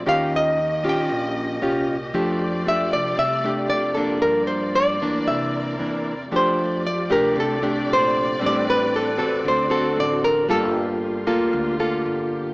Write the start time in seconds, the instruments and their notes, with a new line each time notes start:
0.06 upright bass D#2, nylon-string guitar D#3 C#4 F4 G4 F5, string section C#4 G4 D#5
0.36 nylon-string guitar D#5
0.83 upright bass A#1, nylon-string guitar C#4 F4 G4
0.89 nylon-string guitar G5
1.09 upright bass A#1, nylon-string guitar A#2
1.62 upright bass C2, nylon-string guitar C#4 F4 G4
2.13 upright bass F2, nylon-string guitar F3 A3 D4 G4, string section A3 F4 D5
2.66 nylon-string guitar A3 D4 G4 E5
2.92 upright bass C2, nylon-string guitar D5
3.17 upright bass C2, nylon-string guitar C3 E5
3.44 nylon-string guitar A3 D4 G4
3.70 upright bass F2, nylon-string guitar D5
3.95 nylon-string guitar F3 A#3 D4 A4
4.22 upright bass G2, nylon-string guitar G2 A#4, string section A#3 D5
4.47 nylon-string guitar C5
4.75 nylon-string guitar D5
5.01 upright bass D2, nylon-string guitar E3 A#3 D4
5.27 upright bass C2, nylon-string guitar C3 E5, string section C4 E4 A#4
5.79 upright bass E2, nylon-string guitar E3 A#3 D4
6.32 upright bass F2, nylon-string guitar F3 A3 D4 G4, string section A3 F4 G4 D5
6.36 nylon-string guitar C5
6.87 nylon-string guitar D5
7.10 upright bass C2, nylon-string guitar A3 D4 G4 A#4
7.36 upright bass C2, nylon-string guitar C3
7.40 nylon-string guitar A4
7.63 nylon-string guitar A3 D4 G4
7.88 upright bass A#1
7.93 nylon-string guitar C5
8.39 upright bass A1, nylon-string guitar A2 G3 C4 D4, string section C4 B4
8.46 nylon-string guitar D5
8.70 nylon-string guitar B4
8.96 nylon-string guitar A4
9.18 upright bass E2, nylon-string guitar C4 F#4 A4
9.44 upright bass D2, nylon-string guitar D3 C5, string section C4 F#4 A4
9.70 nylon-string guitar C4 F#4 A4
9.97 upright bass A1, nylon-string guitar D5
10.24 nylon-string guitar A#4
10.48 upright bass G1, nylon-string guitar G3 A#3 F4 A4, string section F4 G4
11.27 upright bass D2, nylon-string guitar A#3 F4 A4
11.53 upright bass D2, nylon-string guitar D3
11.79 nylon-string guitar A#3 F4 A4
12.06 upright bass G1